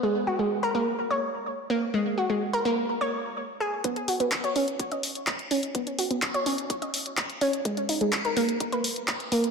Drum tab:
HH |----------------|----------------|xxoxxxoxxxoxxxox|xxoxxxoxxxoxxxox|
CP |----------------|----------------|----x-------x---|----x-------x---|
BD |----------------|----------------|o---o---o---o---|o---o---o---o---|

HH |xxoxxxoxxxoxxxox|
CP |----x-------x---|
BD |o---o---o---o---|